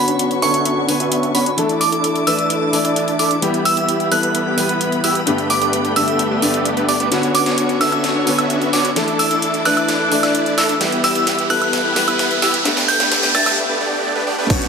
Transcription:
Already playing: D3 B3 F#4 B4 C#5 B5 C#6
0.08 B1 B3 C#4 D4 F#4 C#5, closed hi-hat
0.19 closed hi-hat
0.31 closed hi-hat
0.42 B1 D3 B3 C#4 D4 F#4 A4 C#5 E5 C#6, open hi-hat
0.54 closed hi-hat
0.65 closed hi-hat
0.77 B1 B3 C#4 D4 F#4 C#5
0.87 D3 B3 B4 C#5, open hi-hat
1.00 B1 B3 C#4 D4 F#4 E5, closed hi-hat
1.12 closed hi-hat
1.23 closed hi-hat
1.35 B1 B3 C#4 D4 F#4 C#5 B5, open hi-hat
1.46 closed hi-hat
1.56 D2 E3 A3 D4 E4 A4 E5 D6, closed hi-hat
1.69 closed hi-hat
1.81 D6, open hi-hat
1.92 D2 D4 E4 A4, closed hi-hat
2.04 closed hi-hat
2.16 closed hi-hat
2.26 D2 E3 A3 D4 E4 B4 D5 E6, open hi-hat
2.39 closed hi-hat
2.50 closed hi-hat
2.62 D2 D4 E4 A4
2.72 E3 A3 D4 D5, open hi-hat
2.85 D2 D4 E4 D5, closed hi-hat
2.96 closed hi-hat
3.08 closed hi-hat
3.19 D2 D4 E4 A4 D6, open hi-hat
3.31 closed hi-hat
3.41 E1 E3 G3 B3 E4 G4 B5, closed hi-hat
3.54 closed hi-hat
3.65 E6, open hi-hat
3.77 E1 B3 E4 G4, closed hi-hat
3.89 closed hi-hat
4.00 closed hi-hat
4.11 E1 E3 G3 B3 E4 A4 B4 F#6, open hi-hat
4.23 closed hi-hat
4.35 closed hi-hat
4.46 E1 B3 E4 G4
4.56 E3 G3 B3 B4, open hi-hat
4.69 B3 E4 B4, closed hi-hat
4.81 closed hi-hat
4.92 closed hi-hat
5.04 E2 B3 E4 G4 E6, open hi-hat
5.15 closed hi-hat
5.26 G1 G2 D3 A3 B3 D4 G4 A4 B4 G5, closed hi-hat
5.38 closed hi-hat
5.50 D6, open hi-hat
5.62 A3 B3 D4 G4 B4, closed hi-hat
5.73 closed hi-hat
5.85 closed hi-hat
5.96 G2 D3 A3 B3 D4 G4 A4 E5 E6, open hi-hat
6.08 closed hi-hat
6.19 closed hi-hat
6.31 A3 B3 D4 G4 B4
6.41 G1 G2 D3 A3 B3 D4 G4 B4 D5, open hi-hat
6.54 closed hi-hat
6.65 closed hi-hat
6.77 A3 B3 D4 G4 B4, closed hi-hat
6.88 G2 A3 B3 D4 G4 D5 D6, open hi-hat
7.00 A3 B3 D4 G4 B4, closed hi-hat
7.10 D3 B3 C#4 D4 F#4 B4 C#5 C#6, snare, closed hi-hat, riser
7.23 closed hi-hat
7.35 D6, open hi-hat
7.46 B1 B3 C#4 D4 F#4 C#5, snare, closed hi-hat
7.58 closed hi-hat
7.69 closed hi-hat
7.80 B1 D3 B3 C#4 D4 F#4 A4 C#5 E5 E6, snare, open hi-hat, high woodblock
7.92 closed hi-hat, high woodblock
8.04 snare, closed hi-hat
8.15 B1 B3 C#4 D4 F#4 C#5
8.26 D3 B3 B4 C#5, open hi-hat
8.38 B3 C#4 D4 F#4 E5, closed hi-hat, high woodblock
8.50 closed hi-hat
8.62 closed hi-hat
8.73 B1 B3 C#4 D4 F#4 C#5 D6, snare, open hi-hat
8.85 closed hi-hat
8.95 D2 E3 A3 D4 E4 A4 E5 D6, snare, closed hi-hat
9.08 closed hi-hat
9.19 E6, open hi-hat
9.31 D2 D4 E4 A4, closed hi-hat
9.42 closed hi-hat
9.54 closed hi-hat
9.65 E3 A3 D4 E4 B4 D5 F#6, snare, open hi-hat, high woodblock
9.77 closed hi-hat, high woodblock
9.88 snare, closed hi-hat
10.00 D2 D4 E4 A4
10.10 E3 A3 D4 D5, open hi-hat
10.23 D2 D4 E4 D5, snare, closed hi-hat, high woodblock
10.35 closed hi-hat
10.46 closed hi-hat
10.58 D2 D4 E4 A4 E6, snare, open hi-hat
10.69 closed hi-hat
10.79 E3 G3 B3 E4 G4 B5, snare, closed hi-hat
10.92 closed hi-hat
11.04 E6, snare, open hi-hat
11.15 B3 E4 G4, closed hi-hat
11.27 snare, closed hi-hat
11.38 closed hi-hat
11.49 E3 G3 B3 E4 A4 B4 F#6, snare, open hi-hat, high woodblock
11.62 closed hi-hat, high woodblock
11.73 snare, closed hi-hat
11.85 B3 E4 G4
11.95 E3 G3 B3 B4, snare, open hi-hat
12.08 B3 E4 B4, closed hi-hat, high woodblock
12.19 snare, closed hi-hat
12.31 closed hi-hat
12.42 B3 E4 G4 E6, snare, open hi-hat
12.54 closed hi-hat
12.64 G2 D3 A3 B3 D4 G4 A4 B4 G5, snare, closed hi-hat
12.77 snare, closed hi-hat
12.88 G6, snare, open hi-hat
13.00 A3 B3 D4 G4 B4, snare, closed hi-hat
13.12 snare, closed hi-hat
13.23 snare, closed hi-hat
13.34 G2 D3 A3 B3 D4 G4 A4 E5 A6, snare, open hi-hat, high woodblock
13.46 snare, closed hi-hat, high woodblock
13.69 A3 B3 D4 G4 B4
13.81 A3 B3 D4 G4 D5
14.15 A3 B3 D4 G4 B4
14.27 A3 B3 D4 G4 D5
14.38 A3 B3 D4 G4 B4
14.50 B1 B3 C#4 D4 F#4 B4 C#5 C#6, kick, closed hi-hat, crash, impact
14.62 closed hi-hat

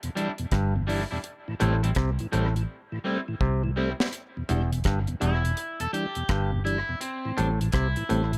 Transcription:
0.03 E2 B2, closed hi-hat
0.15 E3 G3 D4 E4, closed hi-hat
0.38 E2 B2, closed hi-hat
0.52 G1 G2, kick, cross-stick, closed hi-hat
0.76 E2 B2
0.87 E3 G3 D4 E4, open hi-hat
1.11 E2 B2 G3 D4 E4
1.24 closed hi-hat
1.48 A2 E3
1.60 A1 A2 G3 A3 C4 E4, closed hi-hat
1.83 A2 E3 G3 C4 E4, closed hi-hat
1.95 C2 C3, kick, cross-stick, closed hi-hat
2.19 A2 E3, closed hi-hat
2.32 A1 A2 G3 A3 C4 E4, closed hi-hat
2.56 A2 E3, closed hi-hat
2.92 A2 E3
3.04 G3 A3 C4 E4
3.28 A2 E3
3.41 C2 C3, kick
3.64 A2 E3
3.76 G3 A3 C4 E4
4.00 G3 C4 E4, snare
4.13 closed hi-hat
4.37 E2 B2
4.49 E1 E2 E3 G3 D4, closed hi-hat
4.72 E2 B2, closed hi-hat
4.84 G1 G2, kick, cross-stick, closed hi-hat
5.07 E2 B2, closed hi-hat
5.20 E1 E2 E3 G3 D4 E4, closed hi-hat
5.44 E2 B2, closed hi-hat
5.57 closed hi-hat
5.80 E2 B2 A4, closed hi-hat
5.93 E3 G3 D4 G4, closed hi-hat
6.15 E2 B2, closed hi-hat
6.29 G1 G2, kick, cross-stick, closed hi-hat
6.52 E2 B2
6.65 E3 G3 D4 E4, closed hi-hat
6.89 E2 B2
7.01 C4, closed hi-hat
7.25 A2 E3
7.37 A1 A2 G3 A3 C4 D4, closed hi-hat
7.61 A2 E3, closed hi-hat
7.72 C2 C3 E4, kick, cross-stick, closed hi-hat
7.96 A2 E3, closed hi-hat
8.09 A1 A2 G3 A3 C4, closed hi-hat
8.32 A2 E3, closed hi-hat

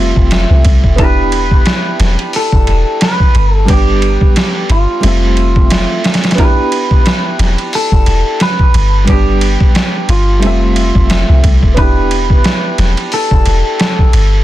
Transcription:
Already playing: F1 G3 A3 C4 F4 E5
0.16 F1, kick
0.31 snare, ride
0.50 C2
0.65 C2, kick, ride
0.84 E1, kick
0.96 B3 D4 B4, kick, ride
1.00 E4 G4
1.32 ride
1.51 kick
1.66 snare, ride
2.00 E1, snare, ride
2.19 ride
2.33 A4, open hi-hat
2.52 E1, kick
2.67 E1, ride
3.01 B4, snare, ride
3.20 kick
3.35 G1, ride
3.54 A4
3.65 G3 B3, kick, ride
3.70 D4 G4
4.02 ride
4.21 kick
4.36 snare, ride
4.70 G1 F4, ride
5.00 F1 G3 A3, ride
5.05 C4 E5
5.37 ride
5.56 kick
5.70 snare, ride
6.04 snare, ride
6.14 snare, ride
6.24 snare, ride
6.31 snare, ride
6.35 B3 D4, kick, ride
6.39 E4 G4 B4
6.72 ride
6.91 kick
7.06 snare, ride
7.39 E1, snare, ride
7.58 ride
7.73 A4, open hi-hat
7.92 E1, kick
8.06 E1, ride
8.40 B4, snare, ride
8.59 kick
8.74 G1, ride
9.04 G3 B3, kick, ride
9.09 D4 G4
9.41 ride
9.60 kick
9.75 snare, ride
10.09 G1 F4, ride
10.39 F1 G3 A3, ride
10.44 C4 E5
10.76 ride
10.95 F1, kick
11.10 snare, ride
11.29 C2
11.44 C2, kick, ride
11.63 E1, kick
11.74 B3 D4, kick, ride
11.78 E4 G4 B4
12.11 ride
12.30 kick
12.44 snare, ride
12.78 E1, snare, ride
12.97 ride
13.12 A4, open hi-hat
13.31 E1, kick
13.46 E1, ride
13.80 snare, ride
13.99 kick
14.13 G1, ride

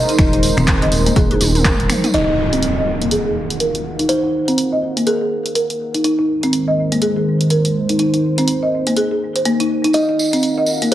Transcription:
Already playing: G#3 D#4 A#4 C5 D#5
0.09 D#4, closed hi-hat, tambourine
0.19 D#1 D#4, finger snap, kick, closed hi-hat, high conga
0.33 D#4, closed hi-hat
0.43 open hi-hat, tambourine
0.57 D#1 C4, finger snap, closed hi-hat, mid tom, high conga, low conga
0.67 finger snap, kick, clap, closed hi-hat, tambourine
0.82 D#5, clap, closed hi-hat, high conga
0.92 D#1, open hi-hat, tambourine
1.06 A#3, closed hi-hat, tambourine
1.16 D#1 G#4, kick, closed hi-hat, high tom, tambourine, high conga, low conga
1.31 G#4, closed hi-hat, high tom
1.41 D#1, open hi-hat, high tom, tambourine
1.55 open hi-hat, mid tom, tambourine
1.65 A#4, kick, clap, closed hi-hat, mid tom
1.80 D#1, closed hi-hat
1.90 finger snap, mid tom, open hi-hat, tambourine, high conga
2.04 D#4, closed hi-hat, mid tom, tambourine
2.14 D#4 A#4 D#5 F5 F#5, closed hi-hat, impact
2.28 D#4
2.53 C4, closed hi-hat
2.63 closed hi-hat
2.77 D#5
3.02 A#3, closed hi-hat
3.11 G#4, closed hi-hat
3.26 G#4
3.50 closed hi-hat
3.60 A#4, closed hi-hat
3.75 closed hi-hat
3.99 D#4, closed hi-hat
4.09 D#4 C5, closed hi-hat
4.24 D#4
4.48 C4, closed hi-hat
4.58 closed hi-hat
4.72 D#5
4.97 A#3, closed hi-hat
5.07 G#4 A#4, closed hi-hat
5.21 G#4
5.46 closed hi-hat
5.55 A#4, closed hi-hat
5.70 closed hi-hat
5.94 D#4, closed hi-hat
6.04 D#3 G#3 D#4 C5, closed hi-hat
6.19 D#4
6.43 C4, closed hi-hat
6.53 closed hi-hat
6.68 D#5
6.92 A#3, closed hi-hat
7.02 G#4, closed hi-hat
7.16 G#4
7.41 closed hi-hat
7.50 A#4, closed hi-hat
7.65 closed hi-hat
7.89 D#4, closed hi-hat
7.99 D#4, closed hi-hat
8.14 D#4, closed hi-hat
8.38 C4, closed hi-hat
8.48 closed hi-hat
8.63 D#5
8.87 A#3, closed hi-hat
8.96 G#4, closed hi-hat
9.11 G#4
9.36 C5, closed hi-hat
9.45 A#3, closed hi-hat
9.60 D#4, closed hi-hat
9.84 D#4, closed hi-hat
9.93 D#4 A#4 D#5 F5 F#5, closed hi-hat, tambourine
10.09 D#4
10.19 tambourine
10.33 C4, closed hi-hat, tambourine
10.43 closed hi-hat, tambourine
10.58 D#5
10.66 tambourine
10.82 A#3, closed hi-hat, tambourine

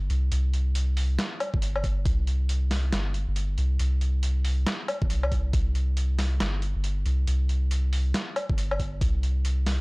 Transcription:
0.10 C2, closed hi-hat
0.32 C2, closed hi-hat
0.54 closed hi-hat
0.75 closed hi-hat
0.97 open hi-hat
1.19 snare, closed hi-hat
1.40 closed hi-hat, low woodblock
1.54 G1, kick
1.62 closed hi-hat
1.76 low woodblock
1.84 kick, closed hi-hat
2.06 C2, kick, closed hi-hat
2.27 closed hi-hat
2.49 closed hi-hat
2.71 snare, open hi-hat
2.93 G1, snare, closed hi-hat
3.14 closed hi-hat
3.28 G1
3.36 closed hi-hat
3.58 C2, closed hi-hat
3.79 C2, closed hi-hat
4.01 closed hi-hat
4.23 closed hi-hat
4.45 open hi-hat
4.66 snare, closed hi-hat
4.88 closed hi-hat, low woodblock
5.02 G1, kick
5.10 C2, closed hi-hat
5.23 low woodblock
5.32 kick, closed hi-hat
5.53 C2, kick, closed hi-hat
5.75 closed hi-hat
5.97 closed hi-hat
6.19 snare, open hi-hat
6.40 G1, snare, closed hi-hat
6.62 closed hi-hat
6.76 G1
6.84 closed hi-hat
7.06 C2, closed hi-hat
7.27 C2, closed hi-hat
7.49 closed hi-hat
7.71 closed hi-hat
7.93 open hi-hat
8.14 snare, closed hi-hat
8.36 closed hi-hat, low woodblock
8.50 G1, kick
8.58 closed hi-hat
8.71 low woodblock
8.80 kick, closed hi-hat
9.01 C2, kick, closed hi-hat
9.23 closed hi-hat
9.45 closed hi-hat
9.66 snare, open hi-hat

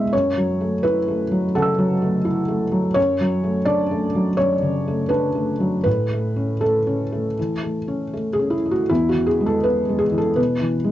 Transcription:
Already playing: B2 G#3 B3 E4 B4 E5
0.13 F#2 C#5
0.37 F#3
0.61 A3
0.83 E4 B4
1.08 A3
1.31 F#3
1.55 C#3 A4 F#5
1.59 A5 E6
1.78 F#3
2.02 A3
2.25 E4
2.48 A3
2.72 F#3
2.94 F#2 C#5
3.21 F#3
3.44 A3
3.65 D4 D5
3.91 A3
4.15 F#3
4.37 F#2 C#5
4.62 C#3
4.88 A3
5.09 D4 B4
5.35 A3
5.60 F#3
5.84 A2 B4
6.11 A3
6.36 C#4
6.61 A3 A4
6.87 C#4
7.12 A3
7.39 E3
7.63 A3
7.88 C#4
8.13 A3
8.33 G#4
8.39 C#4
8.50 E4
8.66 A3
8.71 F#4
8.89 E2 E4
9.09 F#4
9.14 E3
9.27 G#4
9.41 G#3
9.46 A4
9.63 B3 B4
9.89 G#3
9.99 G#4
10.12 E3
10.18 A4
10.36 B2 B4
10.61 E3
10.84 G#3

